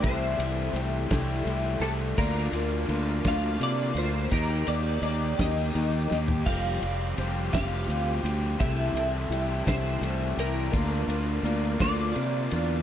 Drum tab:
CC |------------|------------|------------|x-----------|
RD |x-x-x-x-x-x-|x-x-x-x-x-x-|x-x-x-x-x---|--x-x-x-x-x-|
SD |------o-----|------o-----|------o---o-|------o-----|
FT |------------|------------|-----------o|------------|
BD |o-----o-----|o-----o-----|o-----o-----|o-----o-----|

CC |------------|------------|
RD |x-x-x-x-x-x-|x-x-x-x-x-x-|
SD |------o-----|------o-----|
FT |------------|------------|
BD |o-----o-----|o-----o-----|